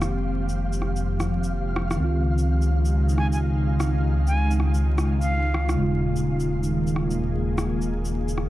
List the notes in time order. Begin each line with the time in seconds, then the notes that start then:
Already playing: F1 D#3 F3 G#3 A#3 C4 G4 F5
0.02 cross-stick, shaker
0.49 shaker
0.73 shaker
0.82 cross-stick
0.96 shaker
1.20 cross-stick, shaker
1.44 shaker
1.76 cross-stick
1.91 cross-stick, shaker
1.96 C#3 D#3 C4
2.00 C#2 F4
2.11 G#3
2.27 D#4
2.36 F4, shaker
2.62 shaker
2.85 shaker
3.09 shaker
3.18 G#5, cross-stick
3.33 G#5, shaker
3.80 cross-stick, shaker
4.27 G#5, shaker
4.51 shaker
4.60 cross-stick
4.75 shaker
4.98 cross-stick, shaker
5.22 F5, shaker
5.54 cross-stick
5.69 cross-stick, shaker
5.74 D#1 C#3 D#3 G#3
5.82 F4
5.95 A#3
6.16 shaker
6.40 G#4, shaker
6.64 shaker
6.87 shaker
6.96 cross-stick
7.11 shaker
7.58 cross-stick, shaker
7.82 shaker
8.05 shaker
8.29 shaker
8.38 cross-stick